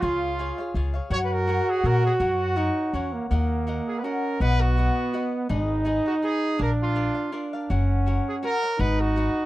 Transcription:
Already playing: trumpet F4
0.02 upright bass C#2, cavaquinho F4 G#4 C#5 F5, trumpet F4
0.39 cavaquinho F4 G#4 C#5 F5
0.58 cavaquinho G#4 C#5 F5
0.74 upright bass C#2, cavaquinho F4 G#4 C#5 F5
0.94 cavaquinho G#4 C#5 F5
1.10 upright bass F#2, cavaquinho F#4 A#4 C#5 F#5, trumpet F#4 C#5
1.24 trumpet B4
1.33 trumpet A#4
1.47 cavaquinho F#4 A#4 C#5 F#5
1.69 trumpet G#4
1.84 upright bass A#2, cavaquinho F#4 A#4 C#5 F#5, trumpet A#4
2.04 trumpet G#4, cavaquinho A#4 C#5 F#5
2.20 upright bass F#2, cavaquinho F#4 A#4 C#5 F#5, trumpet F#4
2.56 trumpet D#4, cavaquinho F#4 A#4 C#5 F#5
2.93 upright bass E2, trumpet C#4, cavaquinho F#4 A#4 C#5 F#5
3.13 trumpet A#3
3.30 upright bass D#2, trumpet A#3, cavaquinho F#4 A#4 D#5 F#5
3.67 cavaquinho F#4 A#4 D#5 F#5
3.87 trumpet G#4
3.99 trumpet B4
4.04 trumpet C#4 A#4, cavaquinho F#4 A#4 D#5 F#5
4.40 upright bass B1, trumpet B3 B4, cavaquinho F#4 B4 D#5 F#5
4.60 trumpet F#4
4.77 cavaquinho F#4 B4 D#5 F#5
5.13 cavaquinho F#4 B4 D#5 F#5
5.49 upright bass G#1, cavaquinho D#4 G#4 B4 D#5, trumpet D#4
5.85 cavaquinho D#4 G#4 B4 D#5
6.06 trumpet F#4, cavaquinho G#4 B4 D#5
6.22 cavaquinho D#4 G#4 B4 D#5, trumpet G#4
6.58 upright bass A#1, cavaquinho D4 A#4 D5 F5, trumpet D4 A#4
6.82 trumpet F4
6.95 cavaquinho D4 A#4 D5 F5
7.15 cavaquinho A#4 D5 F5
7.32 cavaquinho D4 A#4 D5 F5, trumpet D4
7.53 cavaquinho A#4 D5 F5
7.70 upright bass F#1, trumpet C#4, cavaquinho F#4 A#4 C#5 F#5
8.06 cavaquinho F#4 A#4 C#5 F#5
8.28 trumpet G#4
8.43 cavaquinho F#4 A#4 C#5 F#5, trumpet A#4
8.63 cavaquinho A#4 C#5 F#5
8.79 upright bass G#1, trumpet D#4 B4, cavaquinho F#4 G#4 B4 D#5
9.00 trumpet F#4
9.16 cavaquinho F#4 G#4 B4 D#5

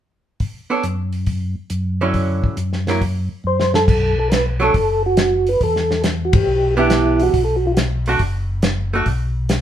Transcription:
0.40 kick, open hi-hat
0.70 hollow-body jazz guitar B3 D4 A4 C#5
0.83 tonewheel organ F#2, closed hi-hat
1.13 open hi-hat
1.26 kick, open hi-hat
1.70 tonewheel organ F#2, closed hi-hat
2.01 hollow-body jazz guitar D3 F#3 C#4 E4
2.14 kick, open hi-hat
2.44 kick
2.57 tonewheel organ F#2, closed hi-hat
2.73 snare
2.87 hollow-body jazz guitar F#3 A#3 E4, snare, open hi-hat
3.01 kick, open hi-hat
3.44 tonewheel organ F#2 C5
3.60 snare
3.74 tonewheel organ A4, snare
3.88 tonewheel organ B1, kick, crash
4.20 tonewheel organ A4
4.30 tonewheel organ A#4 B4, snare, closed hi-hat
4.60 hollow-body jazz guitar F#3 A3 D4, tonewheel organ A4
4.74 tonewheel organ F#1, kick, open hi-hat
5.06 tonewheel organ F#4
5.17 snare, closed hi-hat
5.47 tonewheel organ B4, open hi-hat
5.61 tonewheel organ E2 A4, kick, open hi-hat
5.76 snare
5.91 snare
6.04 snare, closed hi-hat
6.25 tonewheel organ F#4
6.33 tonewheel organ G4, kick, ride
6.47 tonewheel organ B1
6.77 hollow-body jazz guitar E3 B3 D4 G4, tonewheel organ E4
6.90 snare, closed hi-hat
7.20 tonewheel organ F#4, open hi-hat
7.33 tonewheel organ B1, kick, open hi-hat
7.44 tonewheel organ A4
7.56 tonewheel organ F#4
7.67 tonewheel organ F4
7.74 tonewheel organ F#4, snare, closed hi-hat
8.06 hollow-body jazz guitar A3 D4 F#4, open hi-hat
8.19 tonewheel organ F#1, kick, open hi-hat
8.62 snare, closed hi-hat
8.94 hollow-body jazz guitar A3 D4 F#4
9.06 tonewheel organ B1, kick, open hi-hat
9.49 snare, closed hi-hat

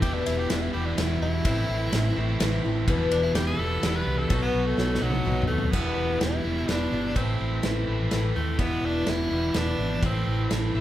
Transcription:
0.02 fingered electric bass E1, steel-string acoustic guitar E2 B2 E3 G3 B3 E4, tenor saxophone G4, kick, ride
0.14 tenor saxophone D4
0.26 fingered electric bass E1, tenor saxophone E4, ride
0.39 tenor saxophone G4
0.49 fingered electric bass E1, steel-string acoustic guitar E3 G3 B3 E4, tenor saxophone D4, snare, ride
0.62 tenor saxophone E4
0.74 fingered electric bass E1, overdriven electric guitar E2 B2, steel-string acoustic guitar E3 G3 B3 E4, tenor saxophone G4
0.86 tenor saxophone D4
0.97 fingered electric bass E1, steel-string acoustic guitar E3 G3 B3 E4, tenor saxophone E4, snare, ride
1.21 fingered electric bass E1, steel-string acoustic guitar E3 G3 B3 E4, tenor saxophone E4
1.45 fingered electric bass A1, steel-string acoustic guitar A2 E3 A3 C4 E4, kick, ride
1.69 fingered electric bass A1
1.92 fingered electric bass A1, steel-string acoustic guitar E3 A3 C4 E4, snare, ride
2.16 fingered electric bass A1, overdriven electric guitar A2 E3, steel-string acoustic guitar A3 C4 E4
2.40 fingered electric bass A1, steel-string acoustic guitar E3 A3 C4 E4, snare, ride
2.64 fingered electric bass A1, steel-string acoustic guitar A3 C4 E4
2.88 fingered electric bass E1, steel-string acoustic guitar E2 B2 E3 G3 B3 E4, kick, ride
3.11 fingered electric bass E1, tenor saxophone D4, ride
3.23 tenor saxophone E4
3.34 fingered electric bass E1, steel-string acoustic guitar E3 G3 B3 E4, tenor saxophone G4, snare, ride
3.47 tenor saxophone A4
3.58 fingered electric bass E1, overdriven electric guitar E2 B2 E3 G3 B3 E4
3.83 fingered electric bass E1, steel-string acoustic guitar E3 G3 B3 E4, snare, ride
3.96 tenor saxophone B4
4.06 fingered electric bass C2
4.18 tenor saxophone A4
4.30 fingered electric bass B1, steel-string acoustic guitar B2 F#3 B3 D#4 F#4, kick, ride
4.42 tenor saxophone B3
4.54 fingered electric bass B1
4.66 tenor saxophone A3
4.77 fingered electric bass B1, steel-string acoustic guitar F#3 B3 D#4 F#4, snare
4.95 snare
5.01 fingered electric bass B1, overdriven electric guitar B2 F#3, tenor saxophone F#3, steel-string acoustic guitar B3 D#4 F#4
5.10 high tom
5.25 fingered electric bass B1, steel-string acoustic guitar F#3 B3 D#4 F#4, mid tom
5.42 mid tom
5.47 fingered electric bass D#2, tenor saxophone A3, steel-string acoustic guitar B3 D#4 F#4
5.58 floor tom
5.72 fingered electric bass E1, steel-string acoustic guitar E2 B2 E3 G3 B3 E4, tenor saxophone B3, kick, crash
5.97 fingered electric bass E1
6.20 fingered electric bass E1, steel-string acoustic guitar E3 G3 B3 E4, tenor saxophone E4, snare, ride
6.44 fingered electric bass E1, overdriven electric guitar E2 B2, steel-string acoustic guitar E3 G3 B3 E4
6.68 fingered electric bass E1, steel-string acoustic guitar E3 G3 B3 E4, tenor saxophone D4, snare, ride
6.91 fingered electric bass G1, steel-string acoustic guitar E3 G3 B3 E4
7.15 fingered electric bass A1, steel-string acoustic guitar A2 E3 A3 C4 E4, tenor saxophone C4, kick, ride
7.41 fingered electric bass A1
7.62 fingered electric bass A1, steel-string acoustic guitar E3 A3 C4 E4, snare, ride
7.87 fingered electric bass A1, overdriven electric guitar A2 E3 A3 C4 E4
8.11 fingered electric bass A1, steel-string acoustic guitar E3 A3 C4 E4, snare, ride
8.36 fingered electric bass D#2, tenor saxophone A3, steel-string acoustic guitar A3 C4 E4
8.59 fingered electric bass E1, steel-string acoustic guitar E2 B2 E3 G3 B3 E4, tenor saxophone B3, kick, ride
8.83 fingered electric bass E1, tenor saxophone D4
9.06 fingered electric bass E1, steel-string acoustic guitar E3 G3 B3 E4, tenor saxophone E4, snare, ride
9.31 fingered electric bass E1, overdriven electric guitar E2 B2, steel-string acoustic guitar E3 G3 B3 E4
9.54 fingered electric bass E1, steel-string acoustic guitar E3 G3 B3 E4, tenor saxophone D4, snare, ride
9.79 fingered electric bass G#1, steel-string acoustic guitar E3 G3 B3 E4
10.03 fingered electric bass A1, steel-string acoustic guitar A2 E3 A3 C4 E4, tenor saxophone C4, kick, ride
10.27 fingered electric bass A1
10.51 fingered electric bass A1, steel-string acoustic guitar E3 A3 C4 E4, snare, ride
10.75 fingered electric bass A1, overdriven electric guitar A2 E3, steel-string acoustic guitar A3 C4 E4

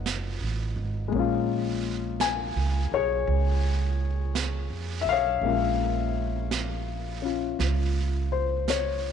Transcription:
Already playing: upright bass F#1, grand piano F3 F#3 A3 B3 C#4 D#4 D#5 F#5
0.06 brush sweep, snare, hi-hat pedal
0.41 upright bass A1
0.76 upright bass G#1
1.08 grand piano G#3 A#3
1.12 upright bass A#1, grand piano C#4, brush sweep
1.19 grand piano F4
2.20 grand piano G#5, brush sweep, snare, hi-hat pedal
2.56 upright bass C#2
2.92 upright bass B1, grand piano C#5
2.96 grand piano G#4
3.27 upright bass C#2, brush sweep
4.35 brush sweep, snare, hi-hat pedal
4.70 upright bass F2
5.01 upright bass B1, grand piano E5
5.09 grand piano C#5 F5
5.41 upright bass A#1, grand piano G#3 A#3 C#4, brush sweep
5.47 grand piano F4
6.51 brush sweep, snare, hi-hat pedal
7.22 grand piano C#4 F4
7.59 upright bass C#2, brush sweep, snare
8.32 grand piano C5
8.68 grand piano C#5, brush sweep, snare, hi-hat pedal

